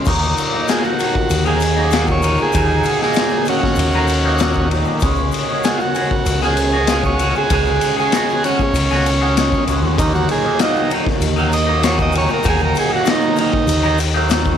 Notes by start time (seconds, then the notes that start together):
0.02 D#2 A#2 D#5 F#5 A#5 C#6, shaker
0.07 D#2 D#3 F#3 A#3 D#4, kick, crash
0.22 shaker
0.38 ride, shaker
0.52 D#3 F#3 A#3 D#4
0.68 D#2 A#2 D#3 F#3 A#3 D#4 G#4, snare, ride, shaker
0.81 F4, shaker
0.85 F#4
0.98 D#3 F#3 A#3 D#4, ride, shaker
1.15 muted clean electric guitar stroke, kick
1.30 D#2, ride, shaker
1.45 D#3 F#3 A#3 D#4 G#4, shaker
1.60 muted clean electric guitar stroke, ride, shaker
1.76 D#3 F#3 A#3 D#4
1.91 D#2 A#2 D#3 F#3 A#3 D#4, snare, ride, shaker
2.07 kick, shaker
2.11 C#5
2.22 D#3 F#3 A#3 D#4, ride, shaker
2.37 D#3 F#3 A#3 D#4, shaker
2.42 G#4
2.52 D#2 A#2 D#3 F#3 A#3 D#4 D#6, kick, ride, shaker
2.83 ride, shaker
3.01 D#3 F#3 A#3 D#4 G#4, snare
3.14 D#2 A#2, snare, ride, shaker
3.18 D#3 F#3 A#3 D#4
3.29 shaker
3.45 D#3 F#3 A#3 C#4, ride, shaker
3.49 D#4 F#4
3.63 muted clean electric guitar stroke, kick, snare
3.76 D#2, ride, shaker
3.92 A#3 D#4, shaker
3.96 D#3 F#3
4.07 muted clean electric guitar stroke, ride, shaker
4.25 D#3 F#3 A#3 D#4
4.38 D#2 A#2 D#3 F#3 A#3 D#4, snare, ride, shaker
4.54 kick, shaker
4.70 D#3 F#3 A#3 D#4, ride
4.85 D#3 F#3 A#3 D#4, shaker
5.00 C#2 C#3 G#3 C#4 F#4 G#4 C#5 F#5 G#5 C#6, kick, ride, shaker
5.16 shaker
5.32 ride, shaker
5.49 C#4 F#4 G#4
5.63 C#3 G#3 C#4 F#4 G#4, snare, ride, shaker
5.77 F4, shaker
5.81 F#4
5.94 G#3 C#4 F#4 G#4, ride, shaker
6.11 muted clean electric guitar stroke, kick
6.26 C#2, ride, shaker
6.42 C#4 F#4 G#4, snare, shaker
6.57 muted clean electric guitar stroke, ride, shaker
6.73 C#4 F#4 G#4
6.87 C#3 G#3 C#4 F#4 G#4, snare, ride, shaker
7.04 C#5, kick, shaker
7.19 G#3 C#4 F#4 G#4, ride, shaker
7.35 C#4 F#4 G#4, shaker
7.47 C#2 C#3 A#5, kick, ride, shaker
7.51 G#3 C#4 F#4 G#4
7.66 shaker
7.81 ride, shaker
7.96 C#4 F#4 G#4, shaker
8.12 C#3 G#3 C#4 F#4 G#4, snare, ride, shaker
8.30 shaker
8.44 G#3 C#4 F#4 G#4, ride, shaker
8.59 muted clean electric guitar stroke, kick, shaker
8.73 C#2, ride, shaker
8.90 C#4 F#4 G#4, snare, shaker
9.06 muted clean electric guitar stroke, ride, shaker
9.22 C#4 F#4 G#4
9.37 C#3 G#3 C#4 F#4 G#4, snare, ride, shaker
9.52 kick, shaker
9.67 C#2 G#3 C#4 F#4 G#4, ride, shaker
9.82 D#2 C#4 F#4 G#4
9.97 D#2 A#2 D#3 F#3 A#3 D#4 D#5, kick, ride, shaker
10.15 F#4, shaker
10.29 G#4, ride
10.44 D#3 F#3 A#3 D#4
10.59 D#2 A#2 D#3 F#3 A#3 D#4, snare, ride, shaker
10.63 D#4
10.76 shaker
10.90 D#3 F#3 A#3 D#4, ride, shaker
11.06 muted clean electric guitar stroke, kick, snare
11.21 D#2, ride, shaker
11.36 D#3 F#3 A#3 D#4, shaker
11.52 D#5, muted clean electric guitar stroke, ride, shaker
11.67 D#3 F#3 A#3 D#4
11.82 D#2 A#2 D#3 F#3 A#3 D#4 C#5, snare, ride, shaker
11.99 D#5, kick, shaker
12.12 D#3 F#3 A#3 D#4, ride, shaker
12.18 C#5
12.28 D#3 F#3 A#3 D#4, shaker
12.34 A#4
12.43 D#2 A#2 D#3 F#3 A#3 D#4, kick, ride, shaker
12.49 G#4
12.59 shaker
12.65 A#4
12.75 ride, shaker
12.79 G#4
12.90 D#3 F#3 A#3 D#4
12.96 F#4
13.05 D#2 A#2 D#3 F#3 A#3 D#4, snare, ride, shaker
13.11 D#4
13.22 shaker
13.36 D#3 F#3 A#3 D#4, ride, shaker
13.41 D#4
13.52 muted clean electric guitar stroke, kick
13.67 D#2, ride, shaker
13.83 D#3 F#3 A#3 D#4, shaker
13.98 muted clean electric guitar stroke, ride, shaker
14.14 D#3 F#3 A#3 D#4
14.28 D#2 A#2 D#3 F#3 A#3 D#4, snare, ride, shaker
14.45 kick, shaker